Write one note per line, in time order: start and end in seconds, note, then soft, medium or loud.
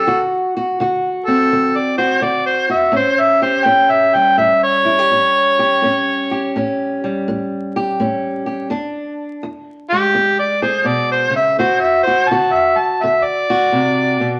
0.00 0.20 A4 medium
0.07 0.74 D3 medium
0.07 0.54 F#4 medium
0.57 0.80 F#4 medium
0.80 1.46 D3 medium
0.80 1.97 F#4 medium
1.26 2.92 C4 medium
1.26 1.78 A4 loud
1.52 2.18 D3 medium
1.76 1.97 D5 medium
1.98 2.21 F#4 medium
1.98 2.25 C5 medium
2.21 2.89 D3 medium
2.21 2.68 F#4 medium
2.21 2.46 D5 medium
2.46 2.69 C5 medium
2.69 2.91 F#4 medium
2.69 2.94 E5 medium
2.92 3.60 A2 medium
2.92 3.65 C#4 medium
2.96 3.22 C5 medium
3.20 3.42 E5 loud
3.42 4.85 G4 medium
3.42 3.67 C5 medium
3.65 4.32 A2 medium
3.65 5.10 C#4 medium
3.65 3.92 G5 loud
3.91 4.16 E5 medium
4.14 7.02 G3 medium
4.14 4.37 G5 medium
4.38 5.05 A2 medium
4.38 4.61 E5 medium
4.63 6.74 C#5 loud
4.85 4.99 E4 medium
4.99 5.58 G4 medium
5.11 5.77 A2 medium
5.11 5.80 C#4 medium
5.59 5.80 G4 medium
5.82 6.49 A2 medium
5.82 6.55 C#4 medium
6.31 7.74 G4 medium
6.56 7.22 A2 medium
6.56 7.99 C#4 medium
7.04 8.71 G3 medium
7.28 7.94 A2 medium
7.76 8.45 G4 medium
8.00 8.66 A2 medium
8.00 8.68 C#4 medium
8.46 8.67 G4 medium
8.70 9.37 E2 medium
8.70 9.46 D4 medium
9.43 10.09 E2 medium
9.90 11.56 G#3 medium
9.90 10.36 G4 loud
10.14 10.81 E2 medium
10.39 10.62 D5 medium
10.62 11.55 G#4 medium
10.62 10.88 C5 medium
10.84 11.30 B2 medium
10.84 11.09 D5 medium
11.12 11.34 C5 medium
11.30 11.56 C#3 medium
11.36 11.58 E5 medium
11.58 12.25 D3 medium
11.58 12.06 F#4 medium
11.58 11.82 C5 medium
11.80 12.03 E5 medium
12.03 12.30 F#4 medium
12.03 12.30 C5 loud
12.29 12.97 D3 medium
12.29 13.49 F#4 medium
12.29 12.54 A5 loud
12.52 12.79 E5 medium
12.77 13.04 A5 medium
13.03 13.70 D3 medium
13.03 13.26 E5 medium
13.24 14.40 D5 loud
13.50 14.40 F#4 medium
13.72 14.20 C3 medium
14.20 14.40 B2 medium